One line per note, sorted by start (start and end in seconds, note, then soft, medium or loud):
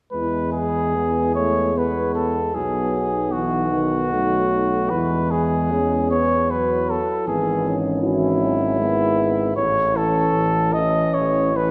0.11 2.52 E2 soft
0.11 0.97 E3 soft
0.11 0.97 G#3 soft
0.11 2.52 E4 soft
0.11 0.51 B4 medium
0.52 1.34 G#4 medium
0.96 2.57 G#3 soft
0.96 1.34 B3 soft
1.35 1.76 A3 soft
1.35 1.79 C#5 medium
1.75 2.53 B3 soft
1.75 2.14 B4 soft
2.15 2.56 A4 medium
2.54 4.88 B1 soft
2.54 3.33 F#3 soft
2.54 4.15 B3 soft
2.54 3.33 D#4 soft
2.54 3.34 G#4 medium
3.32 3.72 E3 soft
3.32 4.92 F#4 medium
3.36 4.89 D#4 soft
3.72 4.11 D#3 soft
4.13 4.93 F#3 soft
4.13 4.91 A3 soft
4.90 6.98 E2 soft
4.90 5.73 E3 soft
4.90 5.73 G#3 soft
4.90 7.23 E4 soft
4.90 5.32 B4 medium
5.31 6.10 G#4 medium
5.71 6.23 G#3 soft
5.71 6.14 C#4 soft
6.11 7.02 B3 soft
6.11 6.52 C#5 medium
6.50 7.29 F#3 soft
6.50 6.92 B4 medium
6.90 7.27 A4 medium
7.27 9.53 G#1 soft
7.27 8.02 E3 soft
7.27 7.68 B3 soft
7.27 8.01 E4 soft
7.27 7.76 G#4 medium
7.66 8.79 C#4 soft
8.02 8.44 E3 soft
8.02 9.53 E4 medium
8.02 8.63 F#4 soft
8.43 8.81 F#3 soft
8.80 9.56 G#3 soft
8.80 9.55 B3 soft
8.80 9.55 E4 soft
9.56 10.25 A1 medium
9.56 9.98 C#5 medium
9.93 10.72 E3 soft
9.93 10.72 C#4 soft
9.93 10.71 E4 soft
9.93 10.75 A4 medium
10.33 11.04 A1 medium
10.72 11.54 E3 soft
10.72 11.53 C#4 soft
10.72 11.53 E4 soft
10.72 11.16 D#5 medium
11.14 11.71 A1 medium
11.14 11.58 C#5 medium
11.53 11.71 E3 soft
11.53 11.71 C#4 soft
11.53 11.71 E4 soft
11.53 11.71 B4 medium